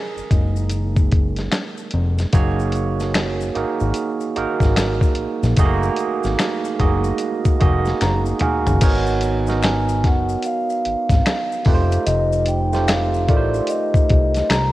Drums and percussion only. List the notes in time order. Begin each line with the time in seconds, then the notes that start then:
0.17 maracas
0.31 kick, closed hi-hat, maracas
0.56 maracas
0.70 closed hi-hat, maracas
0.96 kick, maracas
1.11 kick, closed hi-hat
1.36 snare, closed hi-hat, maracas
1.52 finger snap, snare, closed hi-hat, maracas
1.77 maracas
1.91 closed hi-hat
2.18 snare, closed hi-hat, maracas
2.33 kick, closed hi-hat, maracas
2.60 maracas
2.72 closed hi-hat, maracas
3.00 snare, maracas
3.14 finger snap, snare, closed hi-hat, maracas
3.41 maracas
3.55 closed hi-hat
3.80 maracas
3.94 closed hi-hat, maracas
4.21 maracas
4.36 closed hi-hat
4.60 kick, snare, maracas
4.76 finger snap, snare, closed hi-hat, maracas
5.01 kick, maracas
5.15 closed hi-hat
5.43 snare, maracas
5.57 kick, closed hi-hat, maracas
5.83 maracas
5.96 closed hi-hat, maracas
6.23 snare, maracas
6.39 finger snap, snare, closed hi-hat, maracas
6.65 maracas
6.79 kick, closed hi-hat
7.04 maracas
7.18 closed hi-hat, maracas
7.45 kick, maracas
7.61 kick, closed hi-hat
7.85 snare, maracas
8.01 finger snap, snare, closed hi-hat, maracas
8.26 maracas
8.40 closed hi-hat, mid tom
8.67 floor tom, maracas
8.81 kick, closed hi-hat, crash, maracas
9.07 maracas
9.21 closed hi-hat, maracas
9.47 snare, maracas
9.63 finger snap, snare, closed hi-hat, maracas
9.89 maracas
10.04 kick, snare, closed hi-hat
10.29 maracas
10.43 closed hi-hat, maracas
10.70 maracas
10.85 closed hi-hat
11.09 kick, snare, closed hi-hat, maracas
11.26 finger snap, snare, closed hi-hat, maracas
11.52 maracas
11.65 kick, open hi-hat
11.92 closed hi-hat, maracas
12.07 closed hi-hat, maracas
12.32 maracas
12.46 closed hi-hat, maracas
12.73 snare, maracas
12.88 finger snap, snare, closed hi-hat, maracas
13.14 maracas
13.28 kick, closed hi-hat
13.54 maracas
13.67 closed hi-hat, maracas
13.94 kick, maracas
14.09 kick, closed hi-hat
14.34 snare, closed hi-hat, maracas
14.50 finger snap, snare, closed hi-hat
14.52 finger snap, maracas